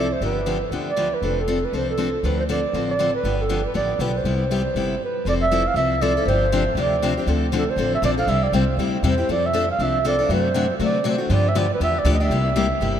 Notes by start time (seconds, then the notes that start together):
Already playing: C2 D5
0.13 C5
0.21 G1 D3 F3 B3 D4 G4
0.25 B4
0.46 D3 F3 B3 D4 G4
0.71 D2 D3 F3 B3 D4 G4
0.90 D5
0.96 D3 F3 B3 D4 G4
1.14 B4
1.22 F1 F3 C4 D4 A4
1.40 A4
1.48 F3 C4 D4 A4
1.65 B4
1.72 C2 F3 C4 D4 A4
1.77 C5
1.91 A4
1.98 F3 C4 D4 A4
2.23 D2 D3 F3 C4 D4 A4 B4
2.40 C5
2.49 D3 F3 C4 D4 A4 D5
2.73 A1 D3 F3 C4 D4 A4
2.91 D5
2.99 D3 F3 C4 D4 A4
3.15 B4
3.24 G1 D3 F3 B3 D4 G4
3.42 A4
3.49 D3 F3 B3 D4 G4
3.66 B4
3.74 A1 D3 F3 B3 D4 G4 D5
3.99 B1 D3 F3 B3 D4 G4 B4
4.17 C5
4.24 C2 C3 G3 B3 E4 G4
4.51 C3 G3 B3 E4 G4
4.75 G1 C3 G3 B3 E4 G4
5.05 B4
5.25 F1 F3 C4 E4 A4 D5
5.42 E5
5.51 F3 C4 E4 A4
5.68 F5
5.74 C2 F3 C4 E4 A4 E5
6.01 F3 C4 E4 A4 D5
6.17 C4 E4 A4
6.25 G1 C3 F3 C4 D4 G4 C5
6.52 C3 F3 C4 D4 G4
6.75 D2 C3 F3 C4 D4 G4 D5
7.02 C3 F3 C4 D4 G4
7.17 C4 D4 G4
7.27 D2 D3 F3 C4 D4 A4
7.52 D3 F3 C4 D4 A4
7.57 A4
7.70 C5
7.76 A1 D3 F3 C4 D4 A4
7.95 E5
8.02 A#1 D3 F3 C4 D4 A4 D5
8.18 C4 D4 A4 F5
8.27 C2 C3 G3 C4 E4 G4 E5
8.44 D5
8.52 C2 C3 G3 C4 E4 G4 C5
8.77 D2 C3 G3 C4 E4 G4
9.03 E2 C3 G3 C4 E4 G4 C5
9.18 C4 E4 G4
9.29 F2 F3 C4 D4 A4 D5
9.46 E5
9.53 F3 C4 D4 A4
9.71 F5
9.79 C2 F3 C4 D4 A4
9.83 E5
10.05 F3 C4 D4 A4 D5
10.19 C4 D4 A4
10.29 F#2 C3 F#3 A3 D4 F#4 C5
10.54 C3 F#3 A3 D4 F#4
10.79 C3 D3 F#3 A3 D4 F#4
10.84 D5
11.04 C3 F#3 A3 D4 F#4
11.08 C5
11.18 A3 D4 F#4
11.30 G2 D3 F3 B3 D4 G4
11.34 D5
11.49 E5
11.55 D3 F3 B3 D4 G4 D5
11.74 B4
11.80 E2 D3 F3 B3 D4 G4 E5
11.99 D5
12.04 D2 D3 F3 B3 D4 G4
12.14 D#5
12.20 B3 D4 G4 E5
12.30 C2 C3 G3 A#3 E4 G4
12.56 C3 G3 A#3 E4 G4
12.80 G1 C3 G3 A#3 E4 G4